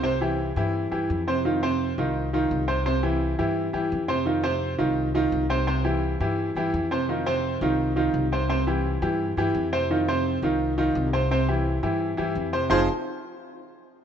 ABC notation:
X:1
M:4/4
L:1/8
Q:1/4=171
K:Cphr
V:1 name="Grand piano"
[C,Cc] [=E,=EG]2 [E,EG]2 [E,EG]2 [C,Cc] | [E,EF] [C,Cc]2 [E,EF]2 [E,EF]2 [C,Cc] | [C,Cc] [=E,=EG]2 [E,EG]2 [E,EG]2 [C,Cc] | [E,EF] [C,Cc]2 [E,EF]2 [E,EF]2 [C,Cc] |
[C,Cc] [=E,=EG]2 [E,EG]2 [E,EG]2 [C,Cc] | [E,EF] [C,Cc]2 [E,EF]2 [E,EF]2 [C,Cc] | [C,Cc] [=E,=EG]2 [E,EG]2 [E,EG]2 [C,Cc] | [E,EF] [C,Cc]2 [E,EF]2 [E,EF]2 [C,Cc] |
[C,Cc] [=E,=EG]2 [E,EG]2 [E,EG]2 [C,Cc] | [F,CEFAc] z6 z |]
V:2 name="Upright bass" clef=bass
C,,3 G,,2 G,, F,,2- | F,,3 C,,3 C,,2- | C,,3 G,,2 G,, F,,2- | F,,3 C,,3 C,,2- |
C,,3 G,,2 G,, F,,2- | F,,3 C,,3 C,,2- | C,,3 G,,2 G,, F,,2- | F,,3 C,,3 C,,2- |
C,,3 G,,2 G,, F,,2 | F,,, z6 z |]